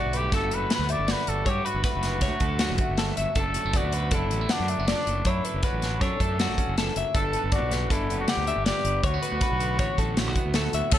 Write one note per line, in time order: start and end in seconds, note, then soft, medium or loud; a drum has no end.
0.00 0.32 B1 medium
0.00 1.06 G2 medium
0.00 0.13 D3 medium
0.00 0.53 F#3 soft
0.00 0.89 A3 medium
0.00 0.18 F#4 medium
0.00 0.33 F#4 medium
0.00 0.14 D5 medium
0.13 0.69 D3 soft
0.13 0.34 G4 medium
0.13 0.33 B4 medium
0.13 closed hi-hat medium
0.32 0.50 G1 medium
0.32 1.08 F#4 medium
0.32 0.71 A4 medium
0.32 0.56 A4 medium
0.32 kick loud
0.32 snare soft
0.32 closed hi-hat medium
0.50 0.65 F#1 medium
0.50 1.27 F#3 medium
0.50 closed hi-hat medium
0.54 0.72 B4 medium
0.70 1.44 D3 medium
0.70 0.93 B4 medium
0.70 0.90 F#5 medium
0.70 snare medium
0.70 closed hi-hat medium
0.79 0.94 D2 medium
0.89 1.85 A3 medium
0.89 1.13 D5 medium
0.89 1.08 E5 medium
0.89 closed hi-hat medium
0.99 1.13 G1 medium
1.07 1.44 G2 medium
1.07 1.47 F#4 medium
1.07 1.46 D5 medium
1.07 snare medium
1.07 closed hi-hat medium
1.12 1.30 B4 medium
1.27 1.42 G1 medium
1.27 1.66 F#3 medium
1.27 1.50 A4 medium
1.27 closed hi-hat medium
1.46 1.60 G2 medium
1.46 2.98 G2 medium
1.46 3.37 F#4 medium
1.46 1.67 G4 medium
1.46 1.65 C#5 medium
1.46 kick medium
1.46 closed hi-hat medium
1.65 2.41 F#3 medium
1.65 1.84 F#4 medium
1.65 1.83 B4 medium
1.65 closed hi-hat soft
1.74 1.82 G1 medium
1.84 2.23 A3 medium
1.84 3.13 F#4 medium
1.84 2.22 B4 medium
1.84 kick loud
1.84 snare soft
1.84 closed hi-hat medium
1.95 2.23 F#1 medium
2.02 2.59 D3 soft
2.02 snare soft
2.02 closed hi-hat soft
2.21 2.29 D2 medium
2.21 2.80 A3 medium
2.21 2.41 C#5 medium
2.21 kick medium
2.21 snare soft
2.21 closed hi-hat medium
2.40 2.72 D2 medium
2.40 3.18 F#3 soft
2.40 2.60 A4 medium
2.40 kick medium
2.40 closed hi-hat medium
2.59 3.34 D3 medium
2.59 2.98 F#4 medium
2.59 snare loud
2.59 closed hi-hat medium
2.70 2.77 F#1 medium
2.78 3.00 A3 soft
2.78 kick medium
2.78 closed hi-hat soft
2.89 3.11 G1 medium
2.98 3.34 G2 medium
2.98 3.66 A3 medium
2.98 3.17 A4 medium
2.98 snare medium
2.98 closed hi-hat medium
3.17 3.25 G1 medium
3.17 3.55 F#3 medium
3.17 3.36 E5 medium
3.17 closed hi-hat medium
3.35 3.57 F#1 medium
3.35 4.50 F#2 medium
3.35 4.14 D4 medium
3.35 3.74 A4 medium
3.35 3.79 A4 medium
3.35 kick medium
3.35 closed hi-hat medium
3.54 3.66 F#3 soft
3.54 closed hi-hat medium
3.65 3.79 F#1 medium
3.65 4.31 A3 soft
3.73 4.70 B3 medium
3.73 4.16 F#4 medium
3.73 3.94 D5 medium
3.73 kick medium
3.73 closed hi-hat medium
3.84 4.13 D2 medium
3.92 5.83 D3 medium
3.92 4.12 B4 medium
3.92 closed hi-hat medium
4.11 4.31 F#1 medium
4.11 4.89 D4 medium
4.11 4.54 E4 medium
4.11 4.50 A4 medium
4.11 kick medium
4.11 closed hi-hat medium
4.31 4.45 A1 medium
4.31 4.41 F#3 medium
4.31 closed hi-hat soft
4.41 4.69 A3 soft
4.49 4.88 F#2 medium
4.49 4.89 D4 medium
4.49 4.69 F#5 medium
4.49 snare medium
4.49 closed hi-hat medium
4.60 4.74 F#2 medium
4.68 4.80 A3 medium
4.68 4.88 E5 medium
4.68 closed hi-hat soft
4.79 4.93 F#1 medium
4.79 5.26 B3 soft
4.88 5.24 F#2 medium
4.88 5.26 D4 medium
4.88 5.30 D4 medium
4.88 5.26 D5 medium
4.88 snare medium
4.88 closed hi-hat medium
5.07 5.21 F#1 medium
5.07 5.45 A3 medium
5.07 closed hi-hat medium
5.25 5.39 F#2 medium
5.25 6.38 F#2 medium
5.25 6.03 D4 medium
5.25 5.66 E4 medium
5.25 5.45 C#5 medium
5.25 kick medium
5.25 closed hi-hat medium
5.45 6.20 A3 soft
5.45 5.63 B4 medium
5.45 closed hi-hat medium
5.54 5.61 F#1 medium
5.63 6.58 C#4 medium
5.63 6.03 F#4 medium
5.63 6.01 B4 medium
5.63 kick loud
5.63 closed hi-hat medium
5.73 6.01 A1 medium
5.82 7.72 D3 soft
5.82 snare soft
5.82 closed hi-hat soft
6.01 6.08 F#2 medium
6.01 7.16 D4 medium
6.01 6.77 A4 medium
6.01 6.21 C#5 medium
6.01 kick medium
6.01 closed hi-hat medium
6.20 6.48 F#2 medium
6.20 7.18 A3 medium
6.20 6.40 A4 medium
6.20 kick medium
6.20 closed hi-hat medium
6.39 6.77 F#2 medium
6.39 6.78 F#4 medium
6.39 snare medium
6.39 closed hi-hat medium
6.48 6.56 A1 medium
6.58 7.13 C#4 medium
6.58 kick medium
6.58 closed hi-hat medium
6.67 6.89 F#1 medium
6.77 6.96 E2 medium
6.77 6.97 A4 medium
6.77 snare medium
6.77 closed hi-hat medium
6.96 7.03 F#1 medium
6.96 7.15 F#2 medium
6.96 7.16 E5 medium
6.96 closed hi-hat medium
7.15 7.36 G1 medium
7.15 8.66 G2 medium
7.15 7.54 D4 medium
7.15 7.50 A4 medium
7.15 7.53 A4 medium
7.15 kick medium
7.15 closed hi-hat medium
7.33 8.11 B3 soft
7.33 closed hi-hat medium
7.44 7.58 G1 medium
7.52 7.92 D4 medium
7.52 7.93 F#4 medium
7.52 7.72 D5 medium
7.52 kick medium
7.52 closed hi-hat medium
7.62 7.90 B1 medium
7.71 8.28 D3 medium
7.71 7.91 B4 medium
7.71 snare soft
7.71 closed hi-hat medium
7.90 8.09 G1 medium
7.90 8.49 D4 medium
7.90 8.19 E4 medium
7.90 8.29 A4 medium
7.90 kick medium
7.90 closed hi-hat medium
8.09 8.24 F#1 medium
8.09 8.86 B3 soft
8.09 closed hi-hat soft
8.20 8.30 F#4 medium
8.28 9.02 D3 medium
8.28 8.66 G4 medium
8.28 8.47 F#5 medium
8.28 snare medium
8.28 closed hi-hat medium
8.37 8.52 D2 medium
8.47 8.68 D4 medium
8.47 8.65 E5 medium
8.47 closed hi-hat soft
8.56 8.71 G1 medium
8.66 9.02 G2 medium
8.66 9.05 D4 medium
8.66 9.08 G4 medium
8.66 9.04 D5 medium
8.66 snare medium
8.66 closed hi-hat medium
8.85 8.99 G1 medium
8.85 9.03 B3 medium
8.85 closed hi-hat medium
9.03 9.18 D2 medium
9.03 10.53 D2 medium
9.03 9.14 A3 soft
9.03 10.56 F#4 medium
9.03 9.22 C#5 medium
9.03 kick medium
9.03 closed hi-hat medium
9.14 9.42 B3 soft
9.22 9.99 F#3 soft
9.22 9.41 B4 medium
9.22 closed hi-hat soft
9.32 9.40 D2 medium
9.41 9.80 B3 medium
9.41 9.79 B4 medium
9.41 kick loud
9.41 closed hi-hat medium
9.51 9.79 B1 medium
9.60 10.98 D3 soft
9.60 closed hi-hat soft
9.79 9.87 A1 medium
9.79 10.36 B3 medium
9.79 9.99 C#5 medium
9.79 kick loud
9.79 closed hi-hat medium
9.98 10.27 A1 medium
9.98 10.73 F#3 medium
9.98 10.17 A4 medium
9.98 kick medium
9.98 closed hi-hat medium
10.17 10.94 A2 soft
10.17 10.55 F#4 medium
10.17 snare medium
10.17 closed hi-hat medium
10.27 10.34 B1 medium
10.36 10.91 B3 medium
10.36 kick medium
10.36 closed hi-hat medium
10.46 10.67 D2 medium
10.54 10.91 D2 medium
10.54 10.91 F#4 medium
10.54 10.74 A4 medium
10.54 snare medium
10.54 closed hi-hat medium
10.73 10.81 D2 medium
10.73 10.98 F#3 medium
10.73 10.93 E5 medium
10.73 closed hi-hat medium
10.91 10.98 D2 medium
10.91 10.98 C#4 medium
10.91 10.98 A4 medium
10.91 10.98 C#5 medium
10.91 kick loud
10.91 crash loud